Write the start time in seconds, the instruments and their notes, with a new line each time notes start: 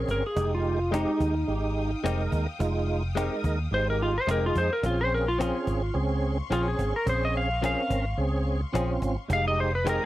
Already playing: tonewheel organ C4 C#4 G#4, string section F5 C6 C#6
0.08 fingered electric bass G1, electric slide guitar A#4, cajon bass
0.26 electric slide guitar G#4
0.36 fingered electric bass F1, tonewheel organ G#3 D#4 G4, string section G5 D#6, cajon bass
0.55 electric slide guitar F4
0.65 cajon slap
0.91 tonewheel organ G#3 D#4 G4, clean electric guitar G#3 C4 D#4 G4, cajon slap
0.95 electric slide guitar D#4
1.20 fingered electric bass D#2, cajon bass
1.48 fingered electric bass G#1, tonewheel organ G#3 D#4 G4, cajon slap
1.77 cajon slap
2.03 fingered electric bass F1, tonewheel organ G#3 D#4 A#4, clean electric guitar G#3 C4 D#4 G4, cajon slap
2.32 fingered electric bass D#2, cajon bass
2.59 fingered electric bass F1, tonewheel organ G#3 D#4 F4, cajon bass
2.75 cajon slap
2.88 cajon slap
3.15 clean electric guitar G#3 C4 D#4 G4, tonewheel organ G#3 D#4 A#4, cajon slap
3.44 fingered electric bass D#2, cajon bass
3.59 cajon slap
3.71 fingered electric bass G#1, tonewheel organ G#3 D#4 G4, electric slide guitar C5, cajon slap
3.88 electric slide guitar A#4, cajon slap
4.00 electric slide guitar F4, cajon slap
4.18 electric slide guitar C5
4.27 fingered electric bass F1, tonewheel organ G#3 D#4 G#4, clean electric guitar G#3 C4 D#4 G4, electric slide guitar A#4, cajon slap
4.46 electric slide guitar F4
4.55 fingered electric bass F2, electric slide guitar C5, cajon bass
4.73 electric slide guitar A#4
4.83 fingered electric bass A#1, tonewheel organ C4 C#4 G#4, electric slide guitar F4, string section C6 C#6, cajon bass
4.98 electric slide guitar C5, cajon slap
5.11 electric slide guitar A#4, cajon slap
5.28 electric slide guitar F4
5.39 clean electric guitar F3 C4 C#4 G#4, tonewheel organ C4 C#4 G#4, electric slide guitar F4, cajon slap
5.67 fingered electric bass G#1, cajon bass
5.94 fingered electric bass C#2, tonewheel organ C4 C#4 G#4, cajon slap
6.23 cajon slap
6.50 fingered electric bass A#1, clean electric guitar F3 C4 C#4 G#4, tonewheel organ C4 C#4 G#4, electric slide guitar F4, cajon slap
6.68 electric slide guitar G#4
6.79 fingered electric bass G#1, cajon bass
6.94 electric slide guitar A#4, cajon slap
7.06 fingered electric bass A#1, tonewheel organ C4 C#4 G#4, electric slide guitar C5, cajon bass
7.25 electric slide guitar D#5
7.35 electric slide guitar F5, cajon slap
7.61 clean electric guitar F3 C4 C#4 G#4, tonewheel organ C4 C#4 A#4, cajon slap
7.65 electric slide guitar F5
7.90 fingered electric bass G#1, cajon bass
8.05 cajon slap
8.17 fingered electric bass C#2, tonewheel organ C4 C#4 G#4, cajon slap
8.46 cajon slap
8.72 fingered electric bass A#1, clean electric guitar F3 C4 C#4 G#4, tonewheel organ C4 C#4 F4, cajon slap
9.02 fingered electric bass G#1, cajon bass
9.28 fingered electric bass F1, tonewheel organ G#3 D#4 G4, string section F5 G5 D#6, cajon bass
9.33 electric slide guitar F5
9.48 electric slide guitar D#5
9.58 electric slide guitar C5, cajon slap
9.75 electric slide guitar B4
9.84 clean electric guitar D#3 G#3 C4 G4, tonewheel organ G#3 D#4 G#4, cajon slap
9.89 electric slide guitar A#4